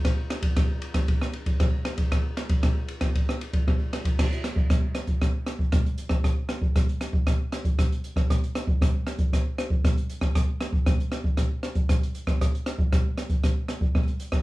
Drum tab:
CC |----------------|----------------|x---------------|----------------|
RD |x-xxx-xxx-xxx-xx|x-xxx-xxx-xxx-xx|----------------|----------------|
HH |----------------|----------------|-xx-x-xxx-x-xxx-|x-x-xxx-x-xxxxx-|
SD |r-r-r--r-r--r-r-|r-r-r--r-r--r-r-|r-r-r-r-r-r-r--r|r-r-r-r-r-r-r--r|
BD |o--oo--oo--oo--o|o--oo--oo--oo--o|o--oo--oo--oo--o|o--oo--oo--oo--o|

CC |----------------|----------------|----------------|
RD |----------------|----------------|----------------|
HH |xxx-x-xxx-x-xxx-|x-x-xxx-x-xxxxx-|xxx-x-xxx-x-xxx-|
SD |r-r-r-r-r-r-r--r|r-r-r-r-r-r-r--r|r-r-r-r-r-r-r--r|
BD |o--oo--oo--oo--o|o--oo--oo--oo--o|o--oo--oo--oo--o|